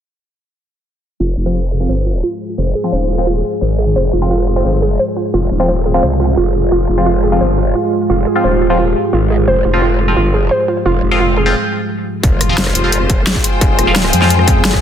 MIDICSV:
0, 0, Header, 1, 8, 480
1, 0, Start_track
1, 0, Key_signature, -4, "minor"
1, 0, Tempo, 344828
1, 1670, Time_signature, 4, 2, 24, 8
1, 20618, End_track
2, 0, Start_track
2, 0, Title_t, "String section"
2, 0, Program_c, 0, 48
2, 17032, Note_on_c, 0, 65, 80
2, 17477, Note_on_c, 0, 72, 92
2, 18520, Note_on_c, 0, 79, 72
2, 20618, Note_off_c, 0, 65, 0
2, 20618, Note_off_c, 0, 72, 0
2, 20618, Note_off_c, 0, 79, 0
2, 20618, End_track
3, 0, Start_track
3, 0, Title_t, "Ambient pad"
3, 0, Program_c, 1, 92
3, 1672, Note_on_c, 1, 56, 82
3, 1672, Note_on_c, 1, 65, 76
3, 1672, Note_on_c, 1, 68, 92
3, 9320, Note_off_c, 1, 68, 0
3, 9351, Note_on_c, 1, 67, 90
3, 16975, Note_off_c, 1, 65, 0
3, 16976, Note_off_c, 1, 56, 0
3, 16999, Note_off_c, 1, 67, 0
3, 17032, Note_on_c, 1, 56, 89
3, 17032, Note_on_c, 1, 65, 76
3, 17032, Note_on_c, 1, 68, 99
3, 20618, Note_off_c, 1, 56, 0
3, 20618, Note_off_c, 1, 65, 0
3, 20618, Note_off_c, 1, 68, 0
3, 20618, End_track
4, 0, Start_track
4, 0, Title_t, "Synth arpeggio sound"
4, 0, Program_c, 2, 84
4, 1672, Note_on_c, 2, 65, 101
4, 1873, Note_off_c, 2, 65, 0
4, 2151, Note_on_c, 2, 72, 79
4, 2286, Note_off_c, 2, 72, 0
4, 2391, Note_on_c, 2, 68, 71
4, 2593, Note_off_c, 2, 68, 0
4, 2631, Note_on_c, 2, 72, 98
4, 2712, Note_off_c, 2, 72, 0
4, 2871, Note_on_c, 2, 65, 77
4, 3073, Note_off_c, 2, 65, 0
4, 3111, Note_on_c, 2, 65, 101
4, 3313, Note_off_c, 2, 65, 0
4, 3591, Note_on_c, 2, 72, 81
4, 3726, Note_off_c, 2, 72, 0
4, 3831, Note_on_c, 2, 68, 78
4, 4033, Note_off_c, 2, 68, 0
4, 4070, Note_on_c, 2, 72, 105
4, 4151, Note_off_c, 2, 72, 0
4, 4311, Note_on_c, 2, 65, 75
4, 4513, Note_off_c, 2, 65, 0
4, 4550, Note_on_c, 2, 65, 99
4, 4752, Note_off_c, 2, 65, 0
4, 5030, Note_on_c, 2, 72, 72
4, 5165, Note_off_c, 2, 72, 0
4, 5270, Note_on_c, 2, 68, 74
4, 5473, Note_off_c, 2, 68, 0
4, 5510, Note_on_c, 2, 72, 98
4, 5591, Note_off_c, 2, 72, 0
4, 5751, Note_on_c, 2, 65, 78
4, 5953, Note_off_c, 2, 65, 0
4, 5991, Note_on_c, 2, 65, 102
4, 6193, Note_off_c, 2, 65, 0
4, 6471, Note_on_c, 2, 72, 79
4, 6605, Note_off_c, 2, 72, 0
4, 6711, Note_on_c, 2, 68, 81
4, 6913, Note_off_c, 2, 68, 0
4, 6950, Note_on_c, 2, 72, 99
4, 7031, Note_off_c, 2, 72, 0
4, 7190, Note_on_c, 2, 65, 72
4, 7393, Note_off_c, 2, 65, 0
4, 7430, Note_on_c, 2, 65, 102
4, 7633, Note_off_c, 2, 65, 0
4, 7911, Note_on_c, 2, 72, 78
4, 8046, Note_off_c, 2, 72, 0
4, 8151, Note_on_c, 2, 68, 74
4, 8353, Note_off_c, 2, 68, 0
4, 8391, Note_on_c, 2, 72, 101
4, 8472, Note_off_c, 2, 72, 0
4, 8631, Note_on_c, 2, 65, 79
4, 8833, Note_off_c, 2, 65, 0
4, 8871, Note_on_c, 2, 65, 98
4, 9073, Note_off_c, 2, 65, 0
4, 9351, Note_on_c, 2, 65, 101
4, 9553, Note_off_c, 2, 65, 0
4, 9831, Note_on_c, 2, 65, 105
4, 9966, Note_off_c, 2, 65, 0
4, 10071, Note_on_c, 2, 68, 75
4, 10273, Note_off_c, 2, 68, 0
4, 10311, Note_on_c, 2, 72, 103
4, 10392, Note_off_c, 2, 72, 0
4, 10551, Note_on_c, 2, 65, 82
4, 10753, Note_off_c, 2, 65, 0
4, 10791, Note_on_c, 2, 65, 92
4, 10993, Note_off_c, 2, 65, 0
4, 11271, Note_on_c, 2, 65, 104
4, 11406, Note_off_c, 2, 65, 0
4, 11511, Note_on_c, 2, 68, 75
4, 11713, Note_off_c, 2, 68, 0
4, 11751, Note_on_c, 2, 72, 102
4, 11832, Note_off_c, 2, 72, 0
4, 11991, Note_on_c, 2, 65, 75
4, 12193, Note_off_c, 2, 65, 0
4, 12231, Note_on_c, 2, 65, 102
4, 12433, Note_off_c, 2, 65, 0
4, 12711, Note_on_c, 2, 65, 100
4, 12845, Note_off_c, 2, 65, 0
4, 12951, Note_on_c, 2, 68, 71
4, 13153, Note_off_c, 2, 68, 0
4, 13191, Note_on_c, 2, 72, 103
4, 13272, Note_off_c, 2, 72, 0
4, 13431, Note_on_c, 2, 65, 76
4, 13633, Note_off_c, 2, 65, 0
4, 13671, Note_on_c, 2, 65, 105
4, 13873, Note_off_c, 2, 65, 0
4, 14151, Note_on_c, 2, 65, 99
4, 14286, Note_off_c, 2, 65, 0
4, 14390, Note_on_c, 2, 68, 82
4, 14593, Note_off_c, 2, 68, 0
4, 14631, Note_on_c, 2, 72, 96
4, 14712, Note_off_c, 2, 72, 0
4, 14871, Note_on_c, 2, 65, 69
4, 15073, Note_off_c, 2, 65, 0
4, 15111, Note_on_c, 2, 65, 107
4, 15313, Note_off_c, 2, 65, 0
4, 15591, Note_on_c, 2, 65, 102
4, 15726, Note_off_c, 2, 65, 0
4, 15831, Note_on_c, 2, 68, 75
4, 16033, Note_off_c, 2, 68, 0
4, 20618, End_track
5, 0, Start_track
5, 0, Title_t, "Synth stab"
5, 0, Program_c, 3, 62
5, 2030, Note_on_c, 3, 53, 72
5, 2031, Note_on_c, 3, 60, 68
5, 2031, Note_on_c, 3, 65, 82
5, 2211, Note_off_c, 3, 53, 0
5, 2211, Note_off_c, 3, 60, 0
5, 2211, Note_off_c, 3, 65, 0
5, 2511, Note_on_c, 3, 53, 66
5, 2511, Note_on_c, 3, 60, 59
5, 2511, Note_on_c, 3, 65, 72
5, 2691, Note_off_c, 3, 53, 0
5, 2691, Note_off_c, 3, 60, 0
5, 2692, Note_off_c, 3, 65, 0
5, 3950, Note_on_c, 3, 53, 97
5, 3950, Note_on_c, 3, 60, 82
5, 3950, Note_on_c, 3, 65, 98
5, 4063, Note_off_c, 3, 53, 0
5, 4063, Note_off_c, 3, 60, 0
5, 4063, Note_off_c, 3, 65, 0
5, 4429, Note_on_c, 3, 65, 94
5, 4430, Note_on_c, 3, 53, 88
5, 4430, Note_on_c, 3, 60, 78
5, 4543, Note_off_c, 3, 53, 0
5, 4543, Note_off_c, 3, 60, 0
5, 4543, Note_off_c, 3, 65, 0
5, 5870, Note_on_c, 3, 53, 72
5, 5870, Note_on_c, 3, 60, 69
5, 5870, Note_on_c, 3, 65, 80
5, 6051, Note_off_c, 3, 53, 0
5, 6051, Note_off_c, 3, 60, 0
5, 6051, Note_off_c, 3, 65, 0
5, 6350, Note_on_c, 3, 53, 68
5, 6350, Note_on_c, 3, 60, 63
5, 6350, Note_on_c, 3, 65, 72
5, 6531, Note_off_c, 3, 53, 0
5, 6531, Note_off_c, 3, 60, 0
5, 6531, Note_off_c, 3, 65, 0
5, 7790, Note_on_c, 3, 53, 92
5, 7790, Note_on_c, 3, 60, 86
5, 7790, Note_on_c, 3, 65, 108
5, 7903, Note_off_c, 3, 53, 0
5, 7903, Note_off_c, 3, 60, 0
5, 7903, Note_off_c, 3, 65, 0
5, 8270, Note_on_c, 3, 53, 90
5, 8270, Note_on_c, 3, 60, 76
5, 8270, Note_on_c, 3, 65, 102
5, 8383, Note_off_c, 3, 53, 0
5, 8383, Note_off_c, 3, 60, 0
5, 8383, Note_off_c, 3, 65, 0
5, 9711, Note_on_c, 3, 53, 78
5, 9711, Note_on_c, 3, 60, 66
5, 9711, Note_on_c, 3, 65, 81
5, 9891, Note_off_c, 3, 53, 0
5, 9891, Note_off_c, 3, 60, 0
5, 9891, Note_off_c, 3, 65, 0
5, 10191, Note_on_c, 3, 53, 65
5, 10191, Note_on_c, 3, 60, 62
5, 10191, Note_on_c, 3, 65, 75
5, 10371, Note_off_c, 3, 53, 0
5, 10371, Note_off_c, 3, 60, 0
5, 10371, Note_off_c, 3, 65, 0
5, 11631, Note_on_c, 3, 53, 93
5, 11631, Note_on_c, 3, 60, 87
5, 11631, Note_on_c, 3, 65, 105
5, 11743, Note_off_c, 3, 53, 0
5, 11743, Note_off_c, 3, 65, 0
5, 11744, Note_off_c, 3, 60, 0
5, 12110, Note_on_c, 3, 53, 89
5, 12110, Note_on_c, 3, 60, 82
5, 12111, Note_on_c, 3, 65, 97
5, 12223, Note_off_c, 3, 53, 0
5, 12223, Note_off_c, 3, 60, 0
5, 12223, Note_off_c, 3, 65, 0
5, 13550, Note_on_c, 3, 53, 77
5, 13550, Note_on_c, 3, 60, 70
5, 13551, Note_on_c, 3, 65, 82
5, 13731, Note_off_c, 3, 53, 0
5, 13731, Note_off_c, 3, 60, 0
5, 13731, Note_off_c, 3, 65, 0
5, 14031, Note_on_c, 3, 53, 69
5, 14031, Note_on_c, 3, 60, 65
5, 14031, Note_on_c, 3, 65, 76
5, 14211, Note_off_c, 3, 53, 0
5, 14211, Note_off_c, 3, 60, 0
5, 14211, Note_off_c, 3, 65, 0
5, 15470, Note_on_c, 3, 53, 96
5, 15470, Note_on_c, 3, 65, 109
5, 15471, Note_on_c, 3, 60, 85
5, 15583, Note_off_c, 3, 53, 0
5, 15583, Note_off_c, 3, 65, 0
5, 15584, Note_off_c, 3, 60, 0
5, 15951, Note_on_c, 3, 53, 91
5, 15951, Note_on_c, 3, 60, 83
5, 15951, Note_on_c, 3, 65, 101
5, 16064, Note_off_c, 3, 53, 0
5, 16064, Note_off_c, 3, 60, 0
5, 16064, Note_off_c, 3, 65, 0
5, 17391, Note_on_c, 3, 53, 79
5, 17391, Note_on_c, 3, 60, 71
5, 17391, Note_on_c, 3, 65, 85
5, 17571, Note_off_c, 3, 53, 0
5, 17571, Note_off_c, 3, 60, 0
5, 17571, Note_off_c, 3, 65, 0
5, 17870, Note_on_c, 3, 53, 72
5, 17870, Note_on_c, 3, 60, 62
5, 17870, Note_on_c, 3, 65, 79
5, 18051, Note_off_c, 3, 53, 0
5, 18051, Note_off_c, 3, 60, 0
5, 18051, Note_off_c, 3, 65, 0
5, 19310, Note_on_c, 3, 65, 106
5, 19311, Note_on_c, 3, 53, 102
5, 19311, Note_on_c, 3, 60, 89
5, 19423, Note_off_c, 3, 65, 0
5, 19424, Note_off_c, 3, 53, 0
5, 19424, Note_off_c, 3, 60, 0
5, 19790, Note_on_c, 3, 53, 96
5, 19790, Note_on_c, 3, 60, 81
5, 19790, Note_on_c, 3, 65, 103
5, 19903, Note_off_c, 3, 53, 0
5, 19903, Note_off_c, 3, 60, 0
5, 19903, Note_off_c, 3, 65, 0
5, 20618, End_track
6, 0, Start_track
6, 0, Title_t, "Wobble bass"
6, 0, Program_c, 4, 39
6, 1670, Note_on_c, 4, 29, 101
6, 1891, Note_off_c, 4, 29, 0
6, 1910, Note_on_c, 4, 29, 94
6, 2611, Note_off_c, 4, 29, 0
6, 2630, Note_on_c, 4, 31, 94
6, 3091, Note_off_c, 4, 31, 0
6, 3590, Note_on_c, 4, 29, 96
6, 3811, Note_off_c, 4, 29, 0
6, 4070, Note_on_c, 4, 27, 97
6, 4771, Note_off_c, 4, 27, 0
6, 5030, Note_on_c, 4, 32, 95
6, 5491, Note_off_c, 4, 32, 0
6, 5510, Note_on_c, 4, 29, 101
6, 5731, Note_off_c, 4, 29, 0
6, 5750, Note_on_c, 4, 29, 96
6, 6451, Note_off_c, 4, 29, 0
6, 6471, Note_on_c, 4, 31, 95
6, 6931, Note_off_c, 4, 31, 0
6, 7430, Note_on_c, 4, 29, 98
6, 7651, Note_off_c, 4, 29, 0
6, 7670, Note_on_c, 4, 27, 89
6, 8371, Note_off_c, 4, 27, 0
6, 8390, Note_on_c, 4, 36, 93
6, 8851, Note_off_c, 4, 36, 0
6, 8871, Note_on_c, 4, 29, 96
6, 9332, Note_off_c, 4, 29, 0
6, 9350, Note_on_c, 4, 29, 99
6, 9571, Note_off_c, 4, 29, 0
6, 9590, Note_on_c, 4, 29, 95
6, 10291, Note_off_c, 4, 29, 0
6, 10311, Note_on_c, 4, 31, 92
6, 10772, Note_off_c, 4, 31, 0
6, 11271, Note_on_c, 4, 29, 99
6, 11492, Note_off_c, 4, 29, 0
6, 11751, Note_on_c, 4, 27, 96
6, 12452, Note_off_c, 4, 27, 0
6, 12710, Note_on_c, 4, 32, 101
6, 13171, Note_off_c, 4, 32, 0
6, 13190, Note_on_c, 4, 29, 101
6, 13411, Note_off_c, 4, 29, 0
6, 13430, Note_on_c, 4, 29, 98
6, 14131, Note_off_c, 4, 29, 0
6, 14151, Note_on_c, 4, 31, 94
6, 14611, Note_off_c, 4, 31, 0
6, 15110, Note_on_c, 4, 29, 104
6, 15331, Note_off_c, 4, 29, 0
6, 15350, Note_on_c, 4, 29, 93
6, 16070, Note_off_c, 4, 29, 0
6, 17030, Note_on_c, 4, 29, 101
6, 17251, Note_off_c, 4, 29, 0
6, 17510, Note_on_c, 4, 29, 98
6, 17731, Note_off_c, 4, 29, 0
6, 17750, Note_on_c, 4, 29, 99
6, 18451, Note_off_c, 4, 29, 0
6, 18950, Note_on_c, 4, 29, 101
6, 19171, Note_off_c, 4, 29, 0
6, 19191, Note_on_c, 4, 27, 99
6, 19652, Note_off_c, 4, 27, 0
6, 19671, Note_on_c, 4, 41, 106
6, 20371, Note_off_c, 4, 41, 0
6, 20390, Note_on_c, 4, 31, 98
6, 20618, Note_off_c, 4, 31, 0
6, 20618, End_track
7, 0, Start_track
7, 0, Title_t, "Impact"
7, 0, Program_c, 5, 103
7, 17031, Note_on_c, 5, 60, 78
7, 18951, Note_off_c, 5, 60, 0
7, 20618, End_track
8, 0, Start_track
8, 0, Title_t, "Drums"
8, 17030, Note_on_c, 9, 36, 123
8, 17031, Note_on_c, 9, 42, 81
8, 17169, Note_off_c, 9, 36, 0
8, 17170, Note_off_c, 9, 42, 0
8, 17271, Note_on_c, 9, 37, 52
8, 17271, Note_on_c, 9, 42, 97
8, 17411, Note_off_c, 9, 37, 0
8, 17411, Note_off_c, 9, 42, 0
8, 17511, Note_on_c, 9, 38, 115
8, 17511, Note_on_c, 9, 42, 84
8, 17631, Note_on_c, 9, 37, 51
8, 17650, Note_off_c, 9, 38, 0
8, 17650, Note_off_c, 9, 42, 0
8, 17750, Note_on_c, 9, 42, 98
8, 17770, Note_off_c, 9, 37, 0
8, 17889, Note_off_c, 9, 42, 0
8, 17990, Note_on_c, 9, 42, 82
8, 18130, Note_off_c, 9, 42, 0
8, 18230, Note_on_c, 9, 36, 101
8, 18230, Note_on_c, 9, 42, 99
8, 18369, Note_off_c, 9, 36, 0
8, 18369, Note_off_c, 9, 42, 0
8, 18471, Note_on_c, 9, 38, 115
8, 18471, Note_on_c, 9, 42, 81
8, 18590, Note_on_c, 9, 36, 60
8, 18610, Note_off_c, 9, 38, 0
8, 18610, Note_off_c, 9, 42, 0
8, 18711, Note_on_c, 9, 42, 99
8, 18729, Note_off_c, 9, 36, 0
8, 18850, Note_off_c, 9, 42, 0
8, 18950, Note_on_c, 9, 36, 127
8, 18950, Note_on_c, 9, 42, 77
8, 19089, Note_off_c, 9, 36, 0
8, 19089, Note_off_c, 9, 42, 0
8, 19191, Note_on_c, 9, 37, 54
8, 19191, Note_on_c, 9, 42, 97
8, 19330, Note_off_c, 9, 37, 0
8, 19330, Note_off_c, 9, 42, 0
8, 19431, Note_on_c, 9, 38, 122
8, 19431, Note_on_c, 9, 42, 78
8, 19551, Note_on_c, 9, 37, 53
8, 19570, Note_off_c, 9, 38, 0
8, 19570, Note_off_c, 9, 42, 0
8, 19671, Note_on_c, 9, 42, 93
8, 19690, Note_off_c, 9, 37, 0
8, 19791, Note_on_c, 9, 38, 38
8, 19810, Note_off_c, 9, 42, 0
8, 19911, Note_on_c, 9, 42, 80
8, 19930, Note_off_c, 9, 38, 0
8, 20032, Note_on_c, 9, 37, 36
8, 20050, Note_off_c, 9, 42, 0
8, 20150, Note_on_c, 9, 36, 103
8, 20151, Note_on_c, 9, 42, 100
8, 20171, Note_off_c, 9, 37, 0
8, 20289, Note_off_c, 9, 36, 0
8, 20290, Note_off_c, 9, 42, 0
8, 20391, Note_on_c, 9, 38, 126
8, 20391, Note_on_c, 9, 42, 82
8, 20510, Note_on_c, 9, 36, 64
8, 20511, Note_on_c, 9, 37, 39
8, 20530, Note_off_c, 9, 38, 0
8, 20530, Note_off_c, 9, 42, 0
8, 20618, Note_off_c, 9, 36, 0
8, 20618, Note_off_c, 9, 37, 0
8, 20618, End_track
0, 0, End_of_file